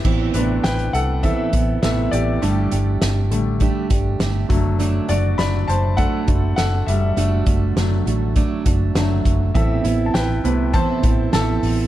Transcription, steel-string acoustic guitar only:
\new Staff \with { instrumentName = "Steel-string acoustic guitar" } { \time 4/4 \key a \dorian \tempo 4 = 101 <a, e b c' e'>8 <b c' e'>4. <a, e b c' e'>8 <b c' e'>8 <e b c' e'>4 | <g a d' g'>8 <a d' g'>4. <g a d' g'>8 <a d' g'>8 <g a d' g'>8 <a d' fis'>8 | <fis a d' fis'>8 <a d' fis'>4. <fis a d' fis'>8 <a d' fis'>8 <fis a d' fis'>4 | <fis a d' fis'>8 <a d' fis'>4 <a d' fis'>8 <fis a d' fis'>8 <a d' fis'>8 <fis a d' fis'>4 |
<a, e b c' e'>8 <b c' e'>4 <b c' e'>8 <a, e b c' e'>8 <b c' e'>8 <e b c' e'>4 | }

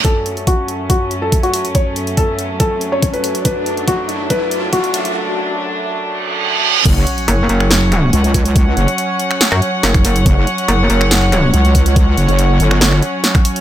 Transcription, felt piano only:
\new Staff \with { instrumentName = "Felt piano" } { \time 4/4 \key fis \minor \tempo 4 = 141 a'8 r8 fis'8 r8 fis'8 r16 a'16 r16 fis'8 r16 | cis''8 r8 a'8 r8 a'8 r16 cis''16 r16 b'8 r16 | b'8 r8 fis'8 r8 b'8 r8 fis'8 r8 | r1 |
r1 | r1 | r1 | r1 | }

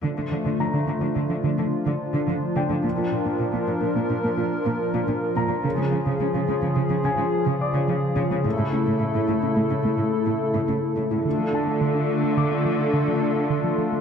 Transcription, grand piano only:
\new Staff \with { instrumentName = "Grand piano" } { \time 5/4 \key d \minor \tempo 4 = 107 r4 bes''2. r8 g''8~ | g''2~ g''8 r2 bes''8~ | bes''2~ bes''8 <gis' gis''>4 <d'' d'''>4.~ | <d'' d'''>4. r2. r8 |
r8 a''4. d'''2. | }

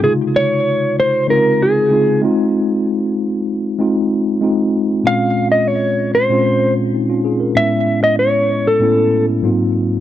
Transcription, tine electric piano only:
\new Staff \with { instrumentName = "Tine electric piano" } { \time 4/4 \key f \phrygian \tempo 4 = 96 << { r1 | r1 | r2. <c' ees'>16 <des' f'>16 <f' aes'>16 bes'16~ | bes'16 r2. r8. | } \\ { <c des aes ees' f'>4. r8 <des aes c' ees' f'>8. r16 <des aes c' ees' f'>8 <aes c' ees' f'>8~ | <aes c' ees' f'>4 r4 <aes c' ees' f'>8. r16 <aes c' ees' f'>8. r16 | <bes, aes c' des' f'>4. r8 <bes, aes c' des' f'>8. r4 r16 | <a, gis ces' cis' e'>4. r8 <a, a ces' cis' e'>8. r16 <aes, ges bes c' ees' f'>8. r16 | } >> }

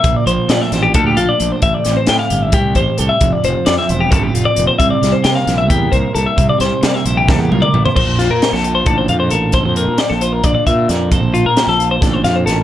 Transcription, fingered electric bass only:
\new Staff \with { instrumentName = "Fingered electric bass" } { \clef bass \time 7/8 \key bes \lydian \tempo 4 = 133 bes,,16 r16 bes,,16 r16 bes,16 r16 a,,8 d,8 bes,,16 r16 bes,,16 r16 | a,,16 r16 a,,16 r16 a,16 r16 g,,8 c,8 a,,16 r16 c,16 r16 | f,,16 r16 f,,16 r16 f,16 r16 e,,8 a,,8 f,,16 r16 f,,16 r16 | c,16 r16 c,16 r16 c16 r16 bes,,8 e,8 c,16 r16 c,16 r16 |
c,16 r16 c,16 r16 c16 r16 bes,,8 e,8 c,16 r16 a,,16 r16 | bes,,16 bes,,8 bes,16 r16 bes,,8. a,,8 f,8 a,,8~ | a,,16 f,8 bes,16 r16 bes,,8. bes,,16 r16 bes,8 f,8~ | f,16 bes,,8 bes,16 r16 bes,,8. a,,8 f,8 a,,8 | }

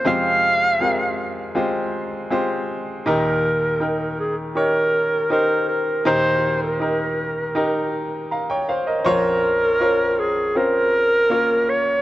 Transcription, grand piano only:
<<
  \new Staff \with { instrumentName = "Grand piano" } { \time 4/4 \key ees \mixolydian \tempo 4 = 80 << { r1 | r1 | r2. <f'' bes''>16 <des'' g''>16 <c'' f''>16 <bes' ees''>16~ | <bes' ees''>16 r2. r8. | } \\ { <aes c' f' g' c''>4 <aes c' f' g' bes'>4 <aes c' f' g' c''>4 <aes c' f' g' c''>4 | <ees' g' bes'>4 <ees' bes' g''>4 <ees' g' des''>4 <ees' g' c''>4 | <ees' g' bes'>4 <ees' g' bes'>4 <ees' g' bes'>4 r4 | <des' f' bes' c'' des''>4 <des' f' bes' c'' des''>4 <c' des' f' bes' c''>4 <bes des' f' bes' des''>4 | } >> }
  \new Staff \with { instrumentName = "Grand piano" } { \clef bass \time 4/4 \key ees \mixolydian <f, c>1 | <ees, bes,>1 | <ees, bes,>1 | <bes,, f,>1 | }
>>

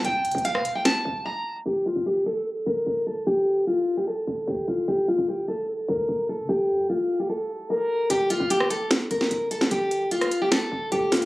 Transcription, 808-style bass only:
\new Staff \with { instrumentName = "808-style bass" } { \clef bass \time 4/4 \key c \dorian \tempo 4 = 149 c,8 c16 c,8 c16 c,16 r8. c,8 r4 | g,,8. g,,4 r8. g,,8 g,,4 | g,,4. r4 g,,8 d,8 g,,8 | g,,8. g,,4.~ g,,16 d,8 f,,8. d16 |
g,,8 g,8. r2 r8. | g,,8. g,,4 r8. g,,8 g,,4 | g,,4. r4 g,,8 d,8 g,,8 | }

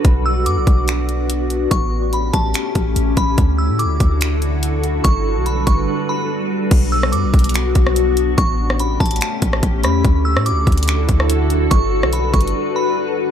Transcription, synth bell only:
\new Staff \with { instrumentName = "Synth bell" } { \time 4/4 \key b \minor \tempo 4 = 144 r8 e'''8 d'''4 r2 | cis'''4 b''8 a''2 b''8 | r8 e'''8 d'''4 r2 | cis'''4 b''8 cis'''4 b''8 r4 |
r8 e'''8 d'''4 r2 | cis'''4 b''8 a''2 b''8 | r8 e'''8 d'''4 r2 | cis'''4 b''8 cis'''4 b''8 r4 | }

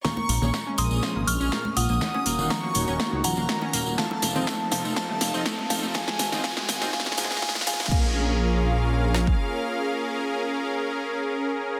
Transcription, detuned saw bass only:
\new Staff \with { instrumentName = "Detuned saw bass" } { \clef bass \time 4/4 \key bes \minor \tempo 4 = 122 r8 bes,,16 bes,,16 r8 bes,,16 bes,,16 r16 aes,,16 bes,,16 bes,,16 r8 bes,,16 bes,,16 | r8 ees,,16 ees,,16 r8 ees,,16 ees,,16 r16 des,16 ees,,16 ees,,16 r8 ees,,16 ees,,16 | r8 f,,16 f,,16 r8 f,,16 f,,16 r16 ees,,16 f,,16 f,,16 r8 f,,16 f,,16 | r8 aes,,16 aes,,16 r8 aes,,16 aes,,16 r16 aes,,16 aes,16 aes,,16 r8 ees,16 aes,,16 |
bes,,2. r4 | r1 | }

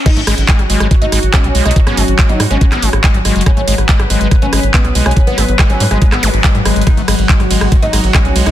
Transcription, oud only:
\new Staff \with { instrumentName = "Oud" } { \time 4/4 \key gis \minor \tempo 4 = 141 dis'16 r2 dis'8 r16 cis'8 r16 dis'16 | r16 cis'8 r8 dis'16 r16 cis'8 r4. r16 | cis'16 r2 cis'8 r16 b8 r16 cis'16 | r16 b8 r8 cis'16 r16 gis8 r4. r16 |
dis'16 r2 dis'8 r16 cis'8 r16 dis'16 | }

